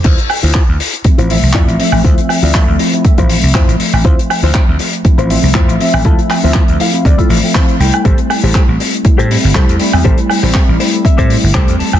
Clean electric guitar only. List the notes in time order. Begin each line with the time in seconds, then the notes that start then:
0.04 E4 F4 C5
0.29 muted clean electric guitar stroke
0.43 E4 F4 C5
0.79 muted clean electric guitar stroke
1.04 muted clean electric guitar stroke
1.18 E4 F4 C5
1.54 E4 F4 D5
1.93 muted clean electric guitar stroke
2.04 E4 F4 C5
2.29 muted clean electric guitar stroke
2.43 E4 F4 D5
2.79 muted clean electric guitar stroke
3.04 muted clean electric guitar stroke
3.18 E4 F4 C5
3.54 E4 F4 C5
3.93 muted clean electric guitar stroke
4.04 E4 F4 C5
4.30 muted clean electric guitar stroke
4.43 E4 F4 C5
4.79 muted clean electric guitar stroke
5.04 muted clean electric guitar stroke
5.18 E4 F4 C5
5.55 E4 F4 C5
5.93 muted clean electric guitar stroke
6.05 E4 F4 A4
6.30 muted clean electric guitar stroke
6.43 E4 F4 C5
6.80 F5, muted clean electric guitar stroke
7.05 D5, muted clean electric guitar stroke
7.18 E4 F4 A4
7.31 E5
7.54 E4 F4 C5 F5
7.80 G5
7.94 muted clean electric guitar stroke
8.05 G4 A4 C5
8.30 muted clean electric guitar stroke
8.44 G4 A4 C5
8.80 muted clean electric guitar stroke
9.05 muted clean electric guitar stroke
9.18 G4 A4 C5
9.55 G4 A4 C5
9.93 muted clean electric guitar stroke
10.04 G4 A4 C5
10.30 muted clean electric guitar stroke
10.43 G4 A4 C5
10.79 C5, muted clean electric guitar stroke
11.04 E5, muted clean electric guitar stroke
11.18 G4 A4 C5
11.54 G4 A4 C5 G5
11.79 A5
11.92 muted clean electric guitar stroke